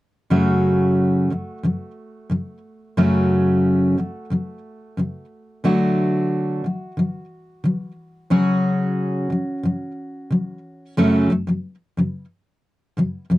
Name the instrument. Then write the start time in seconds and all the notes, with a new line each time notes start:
steel-string acoustic guitar
0.30 F#2 C#3 F#3 A3 C#4 F#4
1.30 F#2 C#3 F#3
1.63 F#2 C#3 F#3
2.30 F#2 C#3 F#3
2.97 F#2 C#3 F#3 A3 C#4 F#4
3.97 F#2 C#3 F#3
4.30 F#2 C#3 F#3
4.97 F#2 C#3 F#3
5.64 D3 F#3 A3 D4 F#4
6.64 D3 F#3
6.97 D3 F#3
7.64 D3 F#3
8.30 C#3 F#3 C#4 F#4 G#4
9.30 C#3 F#3
9.63 C#3 F#3
10.30 C#3 F#3
10.97 F#2 C#3 F#3 A3 C#4 A4
11.30 F#2 C#3 F#3
11.47 F#2 C#3 F#3
11.97 F#2 C#3 F#3
12.97 F#2 C#3 F#3
13.30 F#2 C#3 F#3